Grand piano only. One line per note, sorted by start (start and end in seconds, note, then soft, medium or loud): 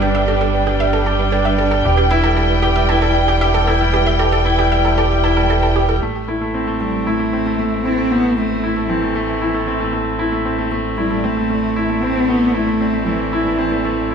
0.00 0.02 G3 medium
0.00 0.15 G3 medium
0.00 0.54 D4 medium
0.00 0.28 G4 medium
0.28 0.41 G4 medium
0.41 0.54 G3 medium
0.54 0.62 D4 medium
0.67 0.75 G3 medium
0.80 0.93 G3 medium
1.06 1.19 G4 medium
1.19 1.32 G3 medium
1.32 1.40 D4 medium
1.46 1.53 G3 medium
1.59 1.71 G3 medium
1.85 1.97 G4 medium
1.98 2.10 G3 medium
2.11 2.18 E4 medium
2.24 2.31 G3 medium
2.37 2.49 G3 medium
2.63 2.76 G4 medium
2.76 2.88 G3 medium
2.89 2.97 E4 medium
3.02 3.10 G3 medium
3.15 3.28 G3 medium
3.41 3.54 G4 medium
3.54 3.67 G3 medium
3.67 3.75 E4 medium
3.80 3.88 G3 medium
3.94 4.06 G3 medium
4.19 4.32 G4 medium
4.33 4.45 G3 medium
4.45 4.53 E4 medium
4.58 4.66 G3 medium
4.72 4.84 G3 medium
4.98 5.10 G4 medium
5.10 5.23 G3 medium
5.24 5.31 E4 medium
5.37 5.44 G3 medium
5.50 5.62 G3 medium
5.76 5.88 G4 medium
5.89 6.02 G3 medium
6.02 6.15 A3 medium
6.28 6.41 E4 medium
6.41 6.54 A3 medium
6.54 6.62 C4 medium
6.67 6.75 A3 medium
6.81 6.93 A3 medium
7.07 7.19 E4 medium
7.20 7.32 A3 medium
7.33 7.40 C4 medium
7.46 7.53 A3 medium
7.59 7.71 A3 medium
7.85 7.97 E4 medium
7.98 8.10 A3 medium
8.11 8.18 C4 medium
8.24 8.31 A3 medium
8.38 8.50 A3 medium
8.63 8.76 E4 medium
8.76 8.89 A3 medium
8.90 8.97 C4 medium
9.02 9.10 A3 medium
9.15 9.28 A3 medium
9.41 9.54 E4 medium
9.54 9.67 A3 medium
9.67 9.75 C4 medium
9.80 9.88 A3 medium
9.93 10.06 A3 medium
10.19 10.32 E4 medium
10.32 10.45 A3 medium
10.45 10.53 C4 medium
10.58 10.66 A3 medium
10.72 10.84 A3 medium
10.98 11.10 E4 medium
11.11 11.23 A3 medium
11.24 11.31 C4 medium
11.37 11.44 A3 medium
11.50 11.62 A3 medium
11.76 11.89 E4 medium
11.89 12.02 A3 medium
12.02 12.10 C4 medium
12.15 12.23 A3 medium
12.29 12.41 A3 medium
12.54 12.67 E4 medium
12.67 12.80 A3 medium
12.81 12.88 C4 medium
12.93 13.01 A3 medium
13.06 13.19 A3 medium
13.33 13.45 E4 medium
13.45 13.58 A3 medium
13.59 13.66 C4 medium
13.72 13.79 A3 medium
13.85 13.97 A3 medium
14.10 14.15 E4 medium